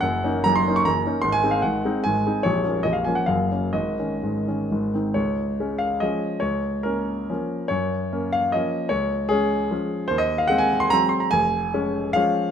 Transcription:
X:1
M:3/4
L:1/16
Q:1/4=144
K:Db
V:1 name="Grand piano"
g4 b c'2 d' b4 | c' a2 f g4 a4 | d4 e f a g f4 | e8- e2 z2 |
d6 f2 e4 | d4 B8 | d6 f2 e4 | d4 A8 |
c e2 f g a2 c' b2 c' b | a8 f4 |]
V:2 name="Grand piano" clef=bass
[G,,,G,,]2 [B,DE]2 [G,,,G,,]2 [B,DE]2 [G,,,G,,]2 [B,DE]2 | [A,,,A,,]2 [A,CE]2 [A,,,A,,]2 [A,CE]2 [A,,,A,,]2 [A,CE]2 | [B,,,,B,,,]2 [F,B,D]2 [B,,,,B,,,]2 [F,B,D]2 [G,,,G,,]2 [G,B,D]2 | [A,,,A,,]2 [E,D]2 [A,,,A,,]2 [E,D]2 [A,,,A,,]2 [E,CE]2 |
D,,4 [A,D]4 [F,A,D]4 | D,,4 [B,D]4 [F,B,D]4 | G,,4 [B,D]4 [F,B,D]4 | D,,4 [A,D]4 [F,A,D]4 |
E,,4 [A,C]4 [G,A,C]4 | F,,,4 [A,D]4 [F,A,D]4 |]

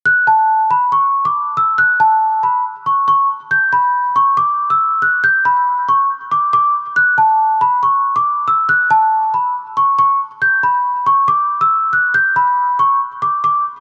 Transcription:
X:1
M:4/4
L:1/16
Q:1/4=139
K:Bm
V:1 name="Celesta"
f'2 a4 b2 c'3 d'3 e'2 | f'2 a4 b2 z2 c'2 c'2 z2 | g'2 b4 c'2 d'3 e'3 f'2 | g'2 b4 c'2 z2 d'2 d'2 z2 |
f'2 a4 b2 c'3 d'3 e'2 | f'2 a4 b2 z2 c'2 c'2 z2 | g'2 b4 c'2 d'3 e'3 f'2 | g'2 b4 c'2 z2 d'2 d'2 z2 |]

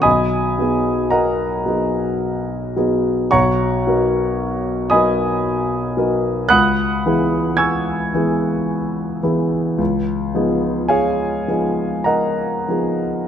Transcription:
X:1
M:3/4
L:1/8
Q:1/4=55
K:C#dor
V:1 name="Grand piano"
[dgbd']2 [Adfa]3 z | [cfac']3 [dgbd']3 | [fbd'f']2 [gc'e'g']3 z | z2 [Gc^eg]2 [Adfa]2 |]
V:2 name="Grand piano"
B,,, [F,B,DG]2 [F,B,DG]2 [F,B,DG] | B,,, [F,B,DA]2 [F,B,DA]2 [F,B,DA] | C,, [E,B,EG]2 [E,B,EG]2 [E,B,EG] | C,, [^E,B,DG]2 [E,B,DG]2 [E,B,DG] |]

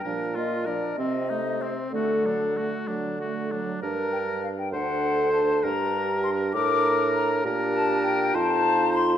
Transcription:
X:1
M:6/8
L:1/16
Q:3/8=66
K:Gm
V:1 name="Flute"
z2 e2 d2 e4 c2 | A6 z6 | z2 g2 f g ^f4 a2 | b4 c'2 d'4 b2 |
z2 a2 g2 a4 c'2 |]
V:2 name="Oboe"
B2 F2 B2 C2 E2 C2 | ^F2 D2 F2 D2 F2 D2 | B6 c6 | B6 B6 |
B6 c6 |]
V:3 name="Clarinet"
D2 F2 D2 C2 A,2 C2 | A,2 ^F,2 A,2 F,2 A,2 F,2 | D6 D6 | D6 D6 |
D6 E6 |]
V:4 name="French horn"
F,2 B,2 F,2 C2 A,2 C2 | A,2 ^F,2 A,2 F,2 A,2 F,2 | B6 A6 | G6 B6 |
G6 F6 |]
V:5 name="Bassoon" clef=bass
B,,6 C,6 | D,6 D,6 | G,,6 D,,6 | G,,6 A,,6 |
B,,6 F,,6 |]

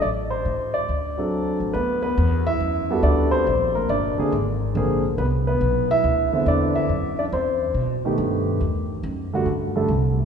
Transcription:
X:1
M:4/4
L:1/8
Q:"Swing" 1/4=140
K:D
V:1 name="Grand piano"
d =c2 d4 z | [K:G] [B,B] [B,B]2 [Ee]3 [Dd] [Cc]- | [Cc] [_B,_B] [Dd]2 z4 | [B,B] [B,B]2 [Ee]3 [Dd] [Ee]- |
[Ee] [Dd] [Cc]2 z4 | z8 |]
V:2 name="Grand piano"
z4 z [F,=CDA]3 | [K:G] z4 z [G,B,FA]3 | z3 [D,_B,C_A] z2 [D,B,CA] z | z4 z [D,B,CE]3 |
z4 z [^D,A,B,G]3 | z3 [D,G,A,F] z [D,G,A,A] z2 |]
V:3 name="Upright bass" clef=bass
A,,,2 A,,2 D,,3 A,,, | [K:G] D,,2 E,,2 F,,2 D,,2 | _B,,,2 G,,, z _A,,,2 B,,,2 | C,,2 B,,,2 D,,2 E,,2 |
F,,2 E,,2 B,,2 G,,2 | E,,2 F,,2 G,,2 C,,2 |]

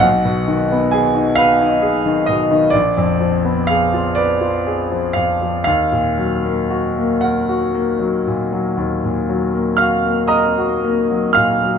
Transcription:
X:1
M:12/8
L:1/16
Q:3/8=39
K:Bbphr
V:1 name="Grand piano"
g4 a2 f4 e2 =d4 f2 d4 f2 | f6 g8- g2 [ff']2 [ebe']4 [ff']2 |]
V:2 name="Grand piano" clef=bass
C,, C, E, C A E c E A E, C, E, B,,, F,, F, C A F c F A F, F,, F, | E,, B,, G, B, G B, B G B, G, B,, G, E,, B,, G, B, G B, B G B, G, B,, G, |]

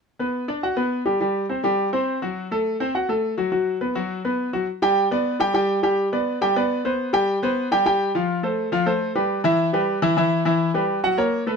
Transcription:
X:1
M:4/4
L:1/8
Q:1/4=208
K:G
V:1 name="Grand piano"
z [B,B]2 [Dd] [Ff] [B,B]2 [G,G] | [G,G]2 [Cc] [G,G]2 [Cc]2 [F,F]- | [F,F] [A,A]2 [Cc] [Ff] [A,A]2 [F,F] | [F,F]2 [B,B] [F,F]2 [B,B]2 [F,F] |
z [G,Gg]2 [B,Bd]2 [G,Gg] [G,Gg]2 | [G,Gg]2 [B,Bd]2 [G,Gg] [B,Bd]2 [B,Bc]- | [B,Bc] [G,Gg]2 [B,Bc]2 [G,Gg] [G,Gg]2 | [=F,=F=f]2 [A,Ac]2 [F,Ff] [A,Ac]2 [G,GB]- |
[G,GB] [E,Ee]2 [G,GB]2 [E,Ee] [E,Ee]2 | [E,Ee]2 [G,GB]2 [F,Ff] [^A,^A^c]2 [=A,=AB] |]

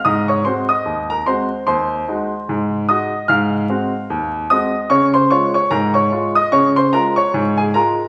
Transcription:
X:1
M:2/4
L:1/16
Q:"Swing 16ths" 1/4=74
K:Db
V:1 name="Grand piano"
[ee'] [dd'] [cc'] [ee']2 [Bb] [cc']2 | [cc']6 [ee']2 | [ff']6 [ee']2 | [dd'] [cc'] [dd'] [dd'] [Bb] [dd']2 [ee'] |
[dd'] [cc'] [Bb] [dd']2 [Aa] [Bb]2 |]
V:2 name="Grand piano" clef=bass
A,,2 [A,CG]2 E,,2 [A,CG]2 | E,,2 [A,EG]2 A,,2 [A,EG]2 | A,,2 [A,CG]2 E,,2 [A,CG]2 | D,2 [A,F]2 A,,2 [A,F]2 |
D,2 [A,F]2 A,,2 [A,F]2 |]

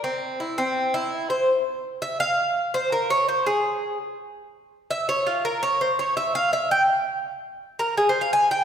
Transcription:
X:1
M:4/4
L:1/8
Q:1/4=166
K:Cphr
V:1 name="Cuban tres"
C2 =E C2 E2 c | [K:Fm] z3 =e f3 c | B d c A3 z2 | z3 =e d F B d |
c d =e f e g z2 | z3 B (3A c f a g |]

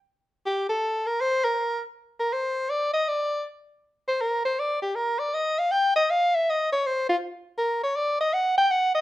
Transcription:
X:1
M:3/4
L:1/8
Q:"Swing" 1/4=160
K:Bb
V:1 name="Soprano saxophone"
z2 G A2 B | c B2 z2 B | c2 d e d2 | z3 c B c |
d G B d e f | g e f =e _e ^c | c F z2 B ^c | d e ^f g f e |]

